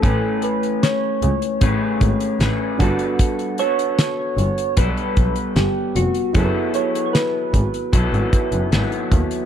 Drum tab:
HH |x-xxx-xxx-xxx-xx|xxxxx-xxxxxxx-xx|x-xxx-xxxxxxxxxx|
SD |----o-------o---|----o-------o---|----o-------o---|
BD |o-------o-o---o-|o-------o-o-----|o-----o-o-o---o-|